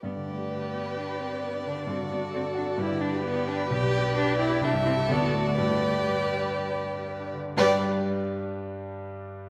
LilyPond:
<<
  \new Staff \with { instrumentName = "Violin" } { \time 4/4 \key g \major \tempo 4 = 128 d''1~ | d''1 | d''2 e''4 d''4~ | d''2.~ d''8 r8 |
d''8 r2. r8 | }
  \new Staff \with { instrumentName = "Violin" } { \time 4/4 \key g \major b'1 | a'2 b'2~ | b'2 a'2 | b'2.~ b'8 r8 |
b'8 r2. r8 | }
  \new Staff \with { instrumentName = "Grand piano" } { \time 4/4 \key g \major g,16 d16 d'16 g'16 b'16 d''16 g''16 b''16 g''16 b''16 g''16 d''16 b'16 d'16 d16 d'16 | g,16 d16 d'16 fis'16 a'16 d''16 fis''16 a''16 g,16 d16 d'16 g'16 b'16 d''16 g''16 b''16 | b,,16 b,16 d'16 g'16 b'16 d''16 g''16 b''16 c,16 g,16 e'16 g'16 d,16 a,16 d'16 fis'16 | g,16 d8 g'16 b'16 d''16 g''16 b''16 g''16 b''16 g''16 d''16 b'16 d'16 d16 d'16 |
<g, g d' g' b' g''>8 r2. r8 | }
  \new Staff \with { instrumentName = "Viola" } { \time 4/4 \key g \major g'1 | fis'2 g'2~ | g'2. fis'4 | g'2.~ g'8 r8 |
g'8 r2. r8 | }
  \new Staff \with { instrumentName = "Cello" } { \time 4/4 \key g \major b8 a4 b8 d'8 c'8 b8 d'8 | c'8 b8 c'8 d'8 e'8 d'8 b8 d'8 | g'4 d'8 e'8 d'8 c'8 b8 a8 | a4 g2 r4 |
g8 r2. r8 | }
>>